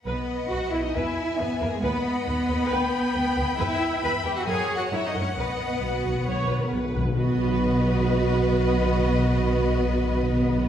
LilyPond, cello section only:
\new Staff \with { instrumentName = "Cello section" } { \time 4/4 \key b \major \tempo 4 = 135 b4 fis'8 e'16 dis'16 e'4 b8 ais16 gis16 | b4 b2. | e'4 b'8 g'16 fis'16 \tuplet 3/2 { gis'4 fis'8 e'8 dis'8 cis'8 } | b2. r4 |
b1~ | b1 | }